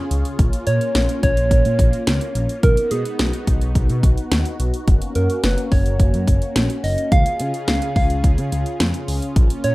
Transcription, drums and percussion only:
0.11 closed hi-hat medium
0.25 closed hi-hat medium
0.39 kick loud
0.39 closed hi-hat medium
0.53 closed hi-hat medium
0.67 closed hi-hat medium
0.81 closed hi-hat medium
0.95 snare loud
0.95 closed hi-hat medium
1.09 closed hi-hat medium
1.23 kick medium
1.23 closed hi-hat medium
1.37 closed hi-hat soft
1.51 kick medium
1.51 closed hi-hat medium
1.65 closed hi-hat soft
1.79 kick medium
1.79 closed hi-hat medium
1.93 closed hi-hat soft
2.07 snare loud
2.07 closed hi-hat medium
2.21 closed hi-hat soft
2.35 closed hi-hat medium
2.49 closed hi-hat medium
2.63 kick loud
2.63 closed hi-hat medium
2.77 closed hi-hat medium
2.91 closed hi-hat medium
3.05 closed hi-hat medium
3.19 snare loud
3.19 closed hi-hat medium
3.33 closed hi-hat medium
3.47 kick medium
3.47 closed hi-hat medium
3.61 closed hi-hat soft
3.75 kick medium
3.75 closed hi-hat medium
3.90 closed hi-hat soft
4.03 kick loud
4.03 closed hi-hat medium
4.18 closed hi-hat soft
4.32 snare loud
4.32 closed hi-hat medium
4.45 closed hi-hat soft
4.60 closed hi-hat medium
4.74 closed hi-hat medium
4.88 kick loud
4.88 closed hi-hat medium
5.02 closed hi-hat medium
5.15 closed hi-hat medium
5.30 closed hi-hat medium
5.43 snare loud
5.43 closed hi-hat medium
5.58 closed hi-hat medium
5.72 kick medium
5.72 open hi-hat medium
5.86 closed hi-hat soft
6.00 kick medium
6.00 closed hi-hat medium
6.14 closed hi-hat soft
6.28 kick loud
6.28 closed hi-hat medium
6.42 closed hi-hat soft
6.56 snare loud
6.56 closed hi-hat medium
6.70 closed hi-hat soft
6.84 open hi-hat medium
6.98 closed hi-hat medium
7.12 kick loud
7.12 closed hi-hat medium
7.26 closed hi-hat medium
7.40 closed hi-hat medium
7.54 closed hi-hat medium
7.68 snare loud
7.68 closed hi-hat medium
7.82 closed hi-hat medium
7.96 kick medium
7.96 open hi-hat medium
8.10 closed hi-hat soft
8.24 kick medium
8.24 closed hi-hat medium
8.38 closed hi-hat soft
8.52 closed hi-hat medium
8.66 closed hi-hat soft
8.80 snare loud
8.80 closed hi-hat medium
8.94 closed hi-hat medium
9.08 open hi-hat medium
9.22 closed hi-hat medium
9.36 kick loud
9.36 closed hi-hat medium
9.50 closed hi-hat medium
9.64 closed hi-hat medium

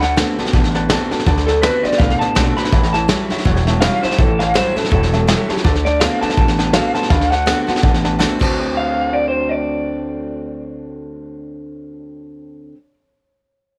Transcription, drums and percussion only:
0.02 snare soft
0.17 snare loud
0.17 hi-hat pedal medium
0.38 snare soft
0.46 snare soft
0.53 kick loud
0.53 snare soft
0.64 snare soft
0.75 snare soft
0.90 snare loud
0.90 hi-hat pedal medium
1.11 snare soft
1.19 snare soft
1.27 kick loud
1.27 snare soft
1.37 snare soft
1.48 snare soft
1.63 snare loud
1.63 hi-hat pedal medium
1.85 snare soft
1.92 snare soft
2.00 kick loud
2.00 snare soft
2.10 snare soft
2.21 snare soft
2.36 snare loud
2.36 hi-hat pedal medium
2.58 snare soft
2.65 snare soft
2.72 kick loud
2.72 snare soft
2.83 snare soft
2.94 snare soft
3.09 snare loud
3.09 hi-hat pedal medium
3.30 snare soft
3.38 snare soft
3.45 kick loud
3.45 snare soft
3.56 snare soft
3.67 snare soft
3.82 snare loud
3.82 hi-hat pedal medium
4.03 snare soft
4.11 snare soft
4.19 kick loud
4.19 snare soft
4.40 snare soft
4.55 snare loud
4.55 hi-hat pedal medium
4.77 snare soft
4.85 snare soft
4.92 kick loud
4.92 snare soft
5.03 snare soft
5.13 snare soft
5.28 snare loud
5.28 hi-hat pedal medium
5.50 snare soft
5.57 snare soft
5.65 kick loud
5.65 snare soft
5.75 snare soft
5.86 snare soft
6.01 snare loud
6.01 hi-hat pedal medium
6.22 snare soft
6.30 snare soft
6.37 kick loud
6.37 snare soft
6.48 snare soft
6.59 snare soft
6.73 snare loud
6.73 hi-hat pedal medium
6.95 snare soft
7.03 snare soft
7.10 kick loud
7.10 snare soft
7.21 snare soft
7.32 snare soft
7.47 snare loud
7.47 hi-hat pedal medium
7.68 snare soft
7.76 snare soft
7.83 kick loud
7.83 snare soft
7.94 snare soft
8.05 snare soft
8.20 snare medium
8.20 hi-hat pedal loud
8.41 kick loud
8.41 crash medium

